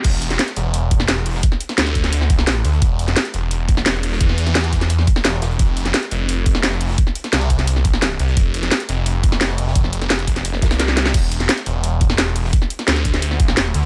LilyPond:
<<
  \new Staff \with { instrumentName = "Detuned saw bass" } { \clef bass \time 4/4 \key d \dorian \tempo 4 = 173 e,,4 r8 e,,4. e,,4 | r4 d,2~ d,8 d,8 | e,,4 r8 e,,4. e,,4 | e,2~ e,8 r8 e,,8 e,,8 |
f,,4 r8 f,,4. f,,4 | r4 c,2~ c,8 c,8 | f,,4 r8 f,,4. f,,4 | f,,2~ f,,8 c,4. |
e,,4 r8 e,,4. e,,4 | r4 d,2~ d,8 d,8 | }
  \new DrumStaff \with { instrumentName = "Drums" } \drummode { \time 4/4 <cymc hh bd>8 hh16 <hh sn>16 <hh sn>16 <hh sn>16 hh8 hh8 <hh bd>16 sn16 <hh sn>16 sn16 <hh hho>16 sn16 | <hh bd>16 sn16 hh16 <hh sn>16 <hh sn>16 <hh sn>16 <hh bd>16 <hh sn>16 hh16 sn16 <hh bd>16 sn16 <hh sn>8 hh16 hh16 | <hh bd>8 hh16 <hh sn>16 <hh sn>16 <hh sn>16 hh8 hh8 <hh bd>16 sn16 <hh sn>16 sn16 <hh hho>16 sn16 | <hh bd>16 sn16 hh16 <hh sn>16 <hh sn>16 <hh sn>16 <hh bd>16 <hh sn>16 hh16 sn16 <hh bd>16 sn16 <hh sn>16 sn16 <hh sn>16 hh16 |
<hh bd>8 hh16 <hh sn>16 <hh sn>16 <hh sn>16 hh8 hh8 <hh bd>16 sn16 <hh sn>16 sn16 <hh hho>16 sn16 | <hh bd>16 sn16 hh16 <hh sn>16 <hh sn>16 <hh sn>16 <hh bd>16 <hh sn>16 hh16 sn16 <hh bd>16 sn16 <hh sn>8 hh16 hh16 | <hh bd>8 hh16 <hh sn>16 <hh sn>16 <hh sn>16 hh8 hh8 <hh bd>16 sn16 <hh sn>16 sn16 <hh hho>16 sn16 | <hh bd>16 sn16 hh16 <hh sn>16 <hh sn>16 <hh sn>16 <hh bd>16 <hh sn>16 hh16 sn16 <hh bd sn>16 <hh sn>16 <hh sn>16 sn16 <hh sn>16 <hh sn>16 |
<cymc hh bd>8 hh16 <hh sn>16 <hh sn>16 <hh sn>16 hh8 hh8 <hh bd>16 sn16 <hh sn>16 sn16 <hh hho>16 sn16 | <hh bd>16 sn16 hh16 <hh sn>16 <hh sn>16 <hh sn>16 <hh bd>16 <hh sn>16 hh16 sn16 <hh bd>16 sn16 <hh sn>8 hh8 | }
>>